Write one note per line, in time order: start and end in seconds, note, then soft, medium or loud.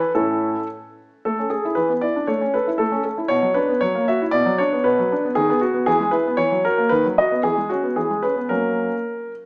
0.00 0.11 B4 medium
0.15 0.54 A2 soft
0.15 0.59 C#4 soft
0.15 0.60 E4 soft
0.15 0.66 A4 medium
1.25 1.38 A3 soft
1.25 1.50 A4 medium
1.39 1.52 C#4 soft
1.50 1.76 G#4 medium
1.50 1.65 A4 soft
1.65 1.77 E4 soft
1.75 1.89 E3 soft
1.75 1.91 B4 medium
1.89 2.03 B3 soft
2.01 2.16 E4 soft
2.01 2.25 D5 medium
2.16 2.29 D4 soft
2.27 2.41 A3 soft
2.27 2.54 C#5 medium
2.41 2.55 C#4 soft
2.54 2.68 A4 soft
2.54 2.69 B4 medium
2.67 2.81 E4 soft
2.78 2.92 A3 soft
2.78 3.03 A4 medium
2.92 3.06 C#4 soft
3.04 3.18 A4 soft
3.18 3.31 E4 soft
3.28 3.43 B2 medium
3.28 3.56 C#5 medium
3.42 3.57 F#3 soft
3.54 3.70 D4 soft
3.54 3.79 B4 medium
3.68 3.82 B3 soft
3.81 3.95 F#3 soft
3.81 4.05 C#5 medium
3.95 4.09 A#3 soft
4.08 4.22 F#4 soft
4.08 4.23 E5 medium
4.22 4.34 E4 soft
4.31 4.46 B2 medium
4.31 4.58 D5 medium
4.46 4.60 F#3 medium
4.58 4.73 D4 soft
4.58 4.85 C#5 medium
4.72 4.86 B3 soft
4.84 4.98 B2 medium
4.84 5.32 B4 medium
4.99 5.12 F#3 soft
5.12 5.25 D4 soft
5.25 5.37 B3 soft
5.35 5.49 D#3 medium
5.35 5.59 G#4 medium
5.50 5.63 B3 medium
5.61 5.87 F#4 medium
5.74 5.87 B3 soft
5.86 6.00 E3 medium
5.86 6.13 G#4 medium
6.00 6.14 G#3 soft
6.11 6.26 E4 soft
6.11 6.38 B4 medium
6.27 6.40 B3 soft
6.37 6.51 E3 medium
6.37 6.64 C#5 medium
6.52 6.65 F#3 soft
6.65 6.79 F#4 soft
6.65 6.91 A#4 medium
6.78 6.91 A#3 soft
6.89 7.04 D#3 medium
6.89 7.05 B4 medium
7.05 7.18 F#3 soft
7.18 7.32 F#4 soft
7.18 7.41 D#5 medium
7.32 7.44 B3 soft
7.43 7.57 E3 soft
7.43 7.70 G#4 medium
7.58 7.71 G#3 soft
7.69 7.84 C#4 soft
7.69 7.96 F#4 medium
7.83 7.97 B3 soft
7.96 8.10 E3 soft
7.96 8.23 G#4 medium
8.10 8.24 G#3 soft
8.22 8.37 C#4 soft
8.22 8.50 B4 medium
8.36 8.50 B3 soft
8.49 8.88 F#3 soft
8.49 8.94 A#3 soft
8.49 8.94 C#4 soft
8.49 9.31 A#4 soft